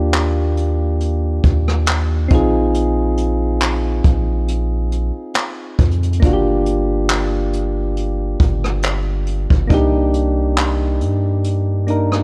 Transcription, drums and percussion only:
0.14 clap, closed hi-hat
0.57 closed hi-hat
1.00 closed hi-hat
1.44 kick, closed hi-hat
1.68 cross-stick
1.86 clap, closed hi-hat
2.30 kick, closed hi-hat
2.74 closed hi-hat
3.17 closed hi-hat
3.61 clap, closed hi-hat
4.04 kick, closed hi-hat
4.48 closed hi-hat
4.92 closed hi-hat
5.34 clap, closed hi-hat
5.79 kick, closed hi-hat
5.91 closed hi-hat
6.03 closed hi-hat
6.13 closed hi-hat
6.22 kick, closed hi-hat
6.66 closed hi-hat
7.10 clap, closed hi-hat
7.53 closed hi-hat
7.97 closed hi-hat
8.40 kick, closed hi-hat
8.64 cross-stick
8.83 clap, closed hi-hat
9.27 closed hi-hat
9.50 kick
9.70 kick, closed hi-hat
10.14 closed hi-hat
10.57 clap, closed hi-hat
11.01 closed hi-hat
11.44 closed hi-hat
11.88 closed hi-hat
12.12 cross-stick

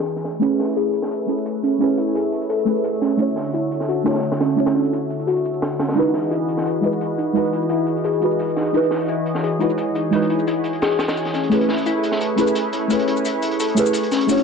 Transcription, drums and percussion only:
0.07 closed hi-hat, cabasa
0.16 snare, closed hi-hat
0.25 snare, closed hi-hat, cabasa
0.33 closed hi-hat
0.42 closed hi-hat, cabasa
0.51 closed hi-hat
0.59 snare, open hi-hat
0.68 cabasa
0.77 closed hi-hat, cabasa
0.94 closed hi-hat, cabasa
1.02 snare
1.11 closed hi-hat, cabasa
1.28 closed hi-hat, cabasa
1.38 cabasa
1.46 closed hi-hat, cabasa
1.63 closed hi-hat, cabasa
1.81 closed hi-hat, cabasa
1.90 closed hi-hat
1.97 closed hi-hat
2.07 cabasa
2.15 closed hi-hat, cabasa
2.32 closed hi-hat, cabasa
2.41 closed hi-hat
2.49 closed hi-hat, cabasa
2.59 closed hi-hat
2.67 closed hi-hat, cabasa
2.76 cabasa
2.84 closed hi-hat, cabasa
2.93 closed hi-hat
3.02 snare, closed hi-hat, cabasa
3.11 closed hi-hat
3.18 closed hi-hat, cabasa
3.28 closed hi-hat
3.36 snare, open hi-hat
3.46 cabasa
3.54 closed hi-hat, cabasa
3.71 closed hi-hat, cabasa
3.80 snare
3.89 closed hi-hat, cabasa
4.06 snare, closed hi-hat, cabasa
4.11 snare, closed hi-hat
4.15 snare, closed hi-hat, cabasa
4.19 snare, closed hi-hat
4.23 closed hi-hat, cabasa
4.32 snare, closed hi-hat
4.40 snare, closed hi-hat, cabasa
4.58 closed hi-hat, cabasa
4.66 snare, closed hi-hat
4.84 closed hi-hat, cabasa
4.93 closed hi-hat, cabasa
5.10 closed hi-hat, cabasa
5.19 closed hi-hat
5.27 closed hi-hat, cabasa
5.36 closed hi-hat
5.45 closed hi-hat, cabasa
5.54 cabasa
5.62 snare, closed hi-hat, cabasa
5.79 snare, closed hi-hat, cabasa
5.88 snare, closed hi-hat, cabasa
5.92 snare, closed hi-hat
5.97 closed hi-hat, cabasa
6.06 closed hi-hat
6.14 snare, open hi-hat
6.23 cabasa
6.31 closed hi-hat, cabasa
6.49 closed hi-hat, cabasa
6.57 snare
6.66 closed hi-hat, cabasa
6.83 closed hi-hat, cabasa
6.92 cabasa
7.01 closed hi-hat, cabasa
7.18 closed hi-hat, cabasa
7.35 closed hi-hat, cabasa
7.44 closed hi-hat
7.53 closed hi-hat
7.62 cabasa
7.69 closed hi-hat, cabasa
7.87 closed hi-hat, cabasa
7.97 closed hi-hat
8.04 closed hi-hat, cabasa
8.13 closed hi-hat
8.21 closed hi-hat, cabasa
8.31 cabasa
8.39 closed hi-hat, cabasa
8.48 closed hi-hat
8.56 snare, closed hi-hat, cabasa
8.66 closed hi-hat
8.74 closed hi-hat, cabasa
8.83 closed hi-hat
8.91 snare, open hi-hat
9.00 cabasa
9.08 closed hi-hat, cabasa
9.26 closed hi-hat, cabasa
9.35 snare
9.43 closed hi-hat, cabasa
9.60 closed hi-hat, cabasa
9.70 cabasa
9.78 closed hi-hat, cabasa
9.95 closed hi-hat, cabasa
10.13 closed hi-hat, cabasa
10.22 closed hi-hat
10.30 closed hi-hat
10.39 cabasa
10.48 closed hi-hat, cabasa
10.64 closed hi-hat, cabasa
10.73 closed hi-hat
10.82 snare, closed hi-hat, cabasa
10.91 closed hi-hat
10.99 snare, closed hi-hat, cabasa
11.08 snare, closed hi-hat, cabasa
11.17 closed hi-hat, cabasa
11.25 snare, closed hi-hat
11.33 snare, closed hi-hat, cabasa
11.43 closed hi-hat
11.51 closed hi-hat, cabasa
11.61 closed hi-hat
11.69 snare, open hi-hat
11.78 cabasa
11.86 closed hi-hat, cabasa
12.03 closed hi-hat, cabasa
12.12 snare
12.21 closed hi-hat, cabasa
12.38 closed hi-hat, cabasa
12.47 cabasa
12.55 closed hi-hat, cabasa
12.73 closed hi-hat, cabasa
12.90 closed hi-hat, cabasa
12.99 closed hi-hat
13.08 closed hi-hat
13.17 cabasa
13.25 closed hi-hat, cabasa
13.42 closed hi-hat, cabasa
13.51 closed hi-hat
13.60 closed hi-hat, cabasa
13.68 closed hi-hat
13.77 closed hi-hat, cabasa
13.86 cabasa
13.93 closed hi-hat, cabasa
14.03 closed hi-hat
14.11 snare, closed hi-hat, cabasa
14.21 closed hi-hat
14.29 closed hi-hat, cabasa
14.37 closed hi-hat

